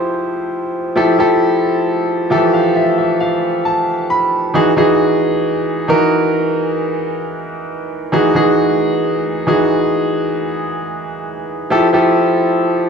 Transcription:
0, 0, Header, 1, 2, 480
1, 0, Start_track
1, 0, Tempo, 895522
1, 517, Time_signature, 4, 2, 24, 8
1, 6911, End_track
2, 0, Start_track
2, 0, Title_t, "Grand piano"
2, 0, Program_c, 0, 0
2, 0, Control_c, 0, 64, 127
2, 0, Note_on_c, 0, 53, 92
2, 0, Note_on_c, 0, 64, 80
2, 0, Note_on_c, 0, 67, 80
2, 0, Note_on_c, 0, 72, 95
2, 512, Note_off_c, 0, 53, 0
2, 512, Note_on_c, 0, 53, 90
2, 516, Note_off_c, 0, 64, 0
2, 516, Note_on_c, 0, 64, 86
2, 518, Note_off_c, 0, 67, 0
2, 518, Note_on_c, 0, 67, 76
2, 521, Note_on_c, 0, 69, 99
2, 601, Note_off_c, 0, 53, 0
2, 602, Note_off_c, 0, 64, 0
2, 603, Note_off_c, 0, 67, 0
2, 605, Note_off_c, 0, 69, 0
2, 635, Note_on_c, 0, 53, 84
2, 636, Note_on_c, 0, 64, 76
2, 639, Note_on_c, 0, 67, 79
2, 642, Note_on_c, 0, 69, 97
2, 1065, Note_off_c, 0, 53, 0
2, 1066, Note_off_c, 0, 64, 0
2, 1067, Note_off_c, 0, 67, 0
2, 1069, Note_off_c, 0, 69, 0
2, 1234, Note_on_c, 0, 53, 87
2, 1237, Note_on_c, 0, 52, 83
2, 1238, Note_on_c, 0, 76, 78
2, 1241, Note_on_c, 0, 67, 86
2, 1242, Note_on_c, 0, 69, 99
2, 1349, Note_off_c, 0, 76, 0
2, 1358, Note_on_c, 0, 77, 72
2, 1470, Note_off_c, 0, 77, 0
2, 1479, Note_on_c, 0, 76, 75
2, 1588, Note_off_c, 0, 76, 0
2, 1596, Note_on_c, 0, 76, 72
2, 1709, Note_off_c, 0, 76, 0
2, 1717, Note_on_c, 0, 77, 76
2, 1922, Note_off_c, 0, 53, 0
2, 1924, Note_off_c, 0, 52, 0
2, 1925, Note_off_c, 0, 67, 0
2, 1926, Note_off_c, 0, 69, 0
2, 1941, Note_off_c, 0, 77, 0
2, 1958, Note_on_c, 0, 81, 74
2, 2181, Note_off_c, 0, 81, 0
2, 2198, Note_on_c, 0, 83, 75
2, 2421, Note_off_c, 0, 83, 0
2, 2432, Note_on_c, 0, 52, 87
2, 2435, Note_on_c, 0, 63, 81
2, 2438, Note_on_c, 0, 66, 82
2, 2441, Note_on_c, 0, 68, 96
2, 2445, Control_c, 0, 64, 0
2, 2450, Note_off_c, 0, 72, 0
2, 2521, Note_off_c, 0, 52, 0
2, 2522, Note_off_c, 0, 63, 0
2, 2524, Note_off_c, 0, 66, 0
2, 2525, Note_off_c, 0, 68, 0
2, 2552, Control_c, 0, 64, 127
2, 2553, Note_on_c, 0, 52, 87
2, 2555, Note_on_c, 0, 63, 80
2, 2558, Note_on_c, 0, 66, 81
2, 2561, Note_on_c, 0, 68, 97
2, 2984, Note_off_c, 0, 52, 0
2, 2985, Note_off_c, 0, 63, 0
2, 2987, Note_off_c, 0, 66, 0
2, 2988, Note_off_c, 0, 68, 0
2, 3152, Note_on_c, 0, 52, 90
2, 3155, Note_on_c, 0, 63, 83
2, 3158, Note_on_c, 0, 66, 81
2, 3161, Note_on_c, 0, 70, 104
2, 3841, Note_off_c, 0, 52, 0
2, 3842, Note_off_c, 0, 63, 0
2, 3844, Note_off_c, 0, 66, 0
2, 3845, Note_off_c, 0, 70, 0
2, 4353, Note_on_c, 0, 52, 89
2, 4356, Note_on_c, 0, 63, 81
2, 4359, Note_on_c, 0, 66, 84
2, 4361, Note_on_c, 0, 68, 100
2, 4441, Note_off_c, 0, 52, 0
2, 4442, Note_off_c, 0, 63, 0
2, 4444, Note_off_c, 0, 66, 0
2, 4445, Note_off_c, 0, 68, 0
2, 4474, Note_on_c, 0, 52, 87
2, 4477, Note_on_c, 0, 63, 77
2, 4479, Note_on_c, 0, 66, 80
2, 4482, Note_on_c, 0, 68, 101
2, 4904, Note_off_c, 0, 52, 0
2, 4906, Note_off_c, 0, 63, 0
2, 4907, Note_off_c, 0, 66, 0
2, 4908, Note_off_c, 0, 68, 0
2, 5075, Note_on_c, 0, 52, 85
2, 5077, Note_on_c, 0, 63, 76
2, 5080, Note_on_c, 0, 66, 83
2, 5083, Note_on_c, 0, 68, 97
2, 5762, Note_off_c, 0, 52, 0
2, 5763, Note_off_c, 0, 63, 0
2, 5765, Note_off_c, 0, 66, 0
2, 5766, Note_off_c, 0, 68, 0
2, 6273, Note_on_c, 0, 53, 93
2, 6276, Note_on_c, 0, 64, 79
2, 6280, Note_on_c, 0, 67, 81
2, 6281, Note_on_c, 0, 69, 100
2, 6285, Control_c, 0, 64, 0
2, 6361, Note_off_c, 0, 53, 0
2, 6363, Note_off_c, 0, 64, 0
2, 6364, Note_off_c, 0, 67, 0
2, 6365, Note_off_c, 0, 69, 0
2, 6391, Control_c, 0, 64, 127
2, 6393, Note_on_c, 0, 53, 89
2, 6396, Note_on_c, 0, 64, 82
2, 6399, Note_on_c, 0, 67, 78
2, 6401, Note_on_c, 0, 69, 93
2, 6824, Note_off_c, 0, 53, 0
2, 6826, Note_off_c, 0, 64, 0
2, 6827, Note_off_c, 0, 67, 0
2, 6828, Note_off_c, 0, 69, 0
2, 6911, End_track
0, 0, End_of_file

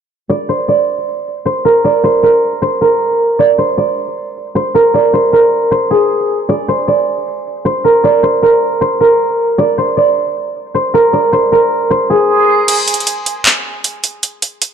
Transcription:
0, 0, Header, 1, 3, 480
1, 0, Start_track
1, 0, Tempo, 387097
1, 365, Time_signature, 4, 2, 24, 8
1, 18276, End_track
2, 0, Start_track
2, 0, Title_t, "Guzheng"
2, 0, Program_c, 0, 107
2, 366, Note_on_c, 0, 74, 90
2, 606, Note_on_c, 0, 72, 77
2, 843, Note_off_c, 0, 74, 0
2, 848, Note_on_c, 0, 74, 78
2, 1801, Note_off_c, 0, 72, 0
2, 1806, Note_on_c, 0, 72, 83
2, 2044, Note_on_c, 0, 70, 87
2, 2283, Note_off_c, 0, 74, 0
2, 2288, Note_on_c, 0, 74, 102
2, 2521, Note_off_c, 0, 72, 0
2, 2526, Note_on_c, 0, 72, 86
2, 2759, Note_off_c, 0, 70, 0
2, 2764, Note_on_c, 0, 70, 64
2, 3243, Note_off_c, 0, 72, 0
2, 3248, Note_on_c, 0, 72, 88
2, 3482, Note_off_c, 0, 70, 0
2, 3487, Note_on_c, 0, 70, 73
2, 4199, Note_off_c, 0, 74, 0
2, 4204, Note_on_c, 0, 74, 104
2, 4438, Note_off_c, 0, 72, 0
2, 4443, Note_on_c, 0, 72, 81
2, 4679, Note_off_c, 0, 74, 0
2, 4684, Note_on_c, 0, 74, 76
2, 5641, Note_off_c, 0, 72, 0
2, 5646, Note_on_c, 0, 72, 79
2, 5881, Note_off_c, 0, 70, 0
2, 5886, Note_on_c, 0, 70, 83
2, 6121, Note_off_c, 0, 74, 0
2, 6126, Note_on_c, 0, 74, 94
2, 6362, Note_off_c, 0, 72, 0
2, 6367, Note_on_c, 0, 72, 90
2, 6600, Note_off_c, 0, 70, 0
2, 6605, Note_on_c, 0, 70, 72
2, 7080, Note_off_c, 0, 72, 0
2, 7085, Note_on_c, 0, 72, 94
2, 7323, Note_on_c, 0, 68, 81
2, 8042, Note_off_c, 0, 74, 0
2, 8047, Note_on_c, 0, 74, 93
2, 8284, Note_off_c, 0, 72, 0
2, 8289, Note_on_c, 0, 72, 77
2, 8524, Note_off_c, 0, 74, 0
2, 8529, Note_on_c, 0, 74, 77
2, 9235, Note_off_c, 0, 70, 0
2, 9483, Note_off_c, 0, 72, 0
2, 9488, Note_on_c, 0, 72, 84
2, 9726, Note_on_c, 0, 70, 84
2, 9962, Note_off_c, 0, 74, 0
2, 9967, Note_on_c, 0, 74, 106
2, 10142, Note_off_c, 0, 68, 0
2, 10201, Note_off_c, 0, 72, 0
2, 10206, Note_on_c, 0, 72, 86
2, 10441, Note_off_c, 0, 70, 0
2, 10446, Note_on_c, 0, 70, 66
2, 10921, Note_off_c, 0, 72, 0
2, 10926, Note_on_c, 0, 72, 89
2, 11160, Note_off_c, 0, 70, 0
2, 11165, Note_on_c, 0, 70, 76
2, 11879, Note_off_c, 0, 74, 0
2, 11884, Note_on_c, 0, 74, 102
2, 12121, Note_off_c, 0, 72, 0
2, 12126, Note_on_c, 0, 72, 81
2, 12358, Note_off_c, 0, 74, 0
2, 12363, Note_on_c, 0, 74, 74
2, 13319, Note_off_c, 0, 72, 0
2, 13324, Note_on_c, 0, 72, 77
2, 13560, Note_off_c, 0, 70, 0
2, 13564, Note_on_c, 0, 70, 89
2, 13799, Note_off_c, 0, 74, 0
2, 13804, Note_on_c, 0, 74, 93
2, 14038, Note_off_c, 0, 72, 0
2, 14043, Note_on_c, 0, 72, 88
2, 14280, Note_off_c, 0, 70, 0
2, 14285, Note_on_c, 0, 70, 73
2, 14757, Note_off_c, 0, 72, 0
2, 14762, Note_on_c, 0, 72, 92
2, 15003, Note_on_c, 0, 68, 80
2, 16094, Note_off_c, 0, 74, 0
2, 16915, Note_off_c, 0, 70, 0
2, 17216, Note_off_c, 0, 72, 0
2, 17823, Note_off_c, 0, 68, 0
2, 18276, End_track
3, 0, Start_track
3, 0, Title_t, "Drums"
3, 15725, Note_on_c, 9, 49, 90
3, 15726, Note_on_c, 9, 42, 85
3, 15849, Note_off_c, 9, 49, 0
3, 15850, Note_off_c, 9, 42, 0
3, 15966, Note_on_c, 9, 42, 74
3, 16045, Note_off_c, 9, 42, 0
3, 16045, Note_on_c, 9, 42, 59
3, 16125, Note_off_c, 9, 42, 0
3, 16125, Note_on_c, 9, 42, 46
3, 16205, Note_off_c, 9, 42, 0
3, 16205, Note_on_c, 9, 42, 84
3, 16329, Note_off_c, 9, 42, 0
3, 16446, Note_on_c, 9, 42, 65
3, 16570, Note_off_c, 9, 42, 0
3, 16683, Note_on_c, 9, 42, 65
3, 16685, Note_on_c, 9, 39, 112
3, 16807, Note_off_c, 9, 42, 0
3, 16809, Note_off_c, 9, 39, 0
3, 17165, Note_on_c, 9, 42, 75
3, 17289, Note_off_c, 9, 42, 0
3, 17405, Note_on_c, 9, 42, 74
3, 17529, Note_off_c, 9, 42, 0
3, 17646, Note_on_c, 9, 42, 85
3, 17770, Note_off_c, 9, 42, 0
3, 17885, Note_on_c, 9, 42, 75
3, 18009, Note_off_c, 9, 42, 0
3, 18124, Note_on_c, 9, 42, 84
3, 18248, Note_off_c, 9, 42, 0
3, 18276, End_track
0, 0, End_of_file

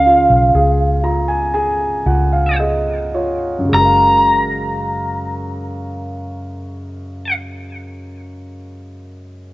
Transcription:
0, 0, Header, 1, 4, 480
1, 0, Start_track
1, 0, Key_signature, 6, "major"
1, 0, Tempo, 985222
1, 749, Tempo, 1056338
1, 1229, Tempo, 1129944
1, 1709, Time_signature, 4, 2, 24, 8
1, 1709, Tempo, 1171875
1, 4090, End_track
2, 0, Start_track
2, 0, Title_t, "Lead electric guitar"
2, 0, Program_c, 0, 29
2, 0, Note_on_c, 0, 77, 72
2, 1217, Note_off_c, 0, 77, 0
2, 1717, Note_on_c, 0, 82, 52
2, 3189, Note_off_c, 0, 82, 0
2, 4090, End_track
3, 0, Start_track
3, 0, Title_t, "Grand piano"
3, 0, Program_c, 1, 0
3, 0, Control_c, 1, 64, 127
3, 0, Note_on_c, 1, 49, 58
3, 30, Note_on_c, 1, 65, 45
3, 267, Note_on_c, 1, 68, 50
3, 495, Note_off_c, 1, 65, 0
3, 502, Note_on_c, 1, 65, 40
3, 505, Note_on_c, 1, 82, 50
3, 618, Note_off_c, 1, 82, 0
3, 624, Note_on_c, 1, 80, 49
3, 740, Note_off_c, 1, 80, 0
3, 743, Note_off_c, 1, 68, 0
3, 750, Note_on_c, 1, 68, 45
3, 750, Note_on_c, 1, 80, 54
3, 969, Note_off_c, 1, 80, 0
3, 981, Note_off_c, 1, 65, 0
3, 988, Note_on_c, 1, 65, 34
3, 988, Note_on_c, 1, 78, 49
3, 1099, Note_off_c, 1, 78, 0
3, 1107, Note_on_c, 1, 77, 47
3, 1221, Note_off_c, 1, 77, 0
3, 1223, Note_off_c, 1, 68, 0
3, 1228, Note_on_c, 1, 75, 48
3, 1230, Note_on_c, 1, 68, 43
3, 1448, Note_off_c, 1, 75, 0
3, 1457, Note_off_c, 1, 65, 0
3, 1463, Note_on_c, 1, 65, 35
3, 1463, Note_on_c, 1, 73, 45
3, 1650, Note_on_c, 1, 42, 41
3, 1666, Note_off_c, 1, 49, 0
3, 1672, Note_on_c, 1, 49, 36
3, 1691, Note_off_c, 1, 73, 0
3, 1694, Note_on_c, 1, 56, 37
3, 1695, Note_off_c, 1, 68, 0
3, 1701, Note_off_c, 1, 65, 0
3, 1714, Control_c, 1, 64, 0
3, 1717, Note_on_c, 1, 66, 37
3, 1741, Note_on_c, 1, 70, 36
3, 1761, Note_on_c, 1, 77, 42
3, 1783, Control_c, 1, 64, 127
3, 3123, Note_off_c, 1, 42, 0
3, 3145, Note_off_c, 1, 49, 0
3, 3166, Note_off_c, 1, 56, 0
3, 3189, Note_off_c, 1, 66, 0
3, 3212, Note_off_c, 1, 70, 0
3, 3232, Note_off_c, 1, 77, 0
3, 4090, End_track
4, 0, Start_track
4, 0, Title_t, "Fingered electric bass"
4, 0, Program_c, 2, 33
4, 0, Note_on_c, 2, 37, 81
4, 125, Note_off_c, 2, 37, 0
4, 146, Note_on_c, 2, 35, 66
4, 255, Note_off_c, 2, 35, 0
4, 266, Note_on_c, 2, 37, 77
4, 969, Note_off_c, 2, 37, 0
4, 986, Note_on_c, 2, 37, 72
4, 1693, Note_off_c, 2, 37, 0
4, 1710, Note_on_c, 2, 30, 64
4, 3182, Note_off_c, 2, 30, 0
4, 4090, End_track
0, 0, End_of_file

